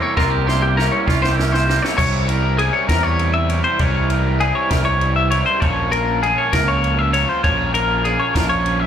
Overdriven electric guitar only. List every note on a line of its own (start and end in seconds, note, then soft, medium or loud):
0.00 0.16 C3 medium
0.00 0.16 G3 medium
0.00 0.16 A#3 medium
0.00 0.16 E4 medium
0.00 0.17 G4 medium
0.16 0.77 C3 loud
0.16 0.75 G3 loud
0.16 0.46 A#3 loud
0.16 0.46 E4 medium
0.16 0.44 G4 loud
0.46 0.76 A#3 medium
0.46 0.76 E4 medium
0.46 0.77 G4 medium
0.76 1.07 G3 medium
0.76 1.06 A#3 medium
0.76 1.05 E4 medium
0.76 1.05 G4 medium
1.06 1.96 C3 medium
1.06 1.97 G3 medium
1.06 1.67 A#3 medium
1.06 1.66 E4 medium
1.06 1.65 G4 medium
1.67 1.97 A#3 medium
1.67 1.96 E4 medium
1.67 1.96 G4 medium
1.97 2.63 C3 medium
1.97 2.63 E3 medium
1.97 2.29 G3 loud
1.97 2.28 C4 loud
1.97 2.28 E4 loud
1.97 2.27 A#4 loud
2.27 2.57 G3 medium
2.27 2.58 C4 medium
2.27 2.59 E4 medium
2.27 2.60 A#4 medium
2.58 2.89 G3 medium
2.58 2.89 C4 medium
2.58 2.88 E4 medium
2.58 2.88 A#4 medium
2.89 3.78 C3 medium
2.89 3.78 E3 medium
2.89 3.49 G3 medium
2.89 3.49 C4 medium
2.89 3.48 E4 medium
2.89 3.48 A#4 loud
3.49 3.78 G3 medium
3.49 3.80 C4 medium
3.49 3.79 E4 medium
3.49 3.80 A#4 medium
3.79 4.40 C3 medium
3.79 4.40 E3 loud
3.79 4.10 G3 medium
3.79 4.10 C4 loud
3.79 4.09 E4 loud
3.79 4.09 A#4 loud
4.09 4.39 G3 medium
4.09 4.41 C4 medium
4.09 4.41 E4 medium
4.09 4.42 A#4 medium
4.41 4.71 G3 medium
4.41 4.71 C4 medium
4.41 4.70 E4 loud
4.41 4.70 A#4 medium
4.71 5.61 C3 medium
4.71 5.61 E3 medium
4.71 5.32 G3 medium
4.71 5.32 C4 medium
4.71 5.31 E4 loud
4.71 5.31 A#4 medium
5.31 5.61 G3 medium
5.31 5.62 C4 medium
5.31 5.60 E4 medium
5.31 5.62 A#4 medium
5.61 6.54 A#2 loud
5.61 6.53 F3 loud
5.61 5.92 A#3 medium
5.61 5.92 C#4 medium
5.61 5.91 F4 loud
5.61 5.90 A#4 loud
5.90 6.21 A#3 medium
5.90 6.22 C#4 medium
5.90 6.22 F4 medium
5.90 6.23 A#4 medium
6.22 6.52 A#3 medium
6.22 6.52 C#4 medium
6.22 6.52 F4 medium
6.22 6.51 A#4 loud
6.52 7.42 A#2 medium
6.52 7.43 F3 medium
6.52 7.13 A#3 medium
6.52 7.13 C#4 medium
6.52 7.13 F4 loud
6.52 7.11 A#4 medium
7.13 7.43 A#3 medium
7.13 7.43 C#4 medium
7.13 7.44 F4 medium
7.13 7.44 A#4 medium
7.43 8.04 A#2 medium
7.43 8.35 F3 loud
7.43 7.75 A#3 medium
7.43 7.74 C#4 medium
7.43 7.74 F4 medium
7.43 7.73 A#4 loud
7.74 8.02 A#3 medium
7.74 8.03 C#4 medium
7.74 8.05 F4 medium
7.74 8.05 A#4 medium
8.03 8.34 A#3 medium
8.03 8.34 C#4 medium
8.03 8.34 F4 medium
8.03 8.33 A#4 medium
8.34 8.87 A#2 medium
8.34 8.87 F3 medium
8.34 8.87 A#3 medium
8.34 8.87 C#4 medium
8.34 8.87 F4 medium
8.34 8.87 A#4 loud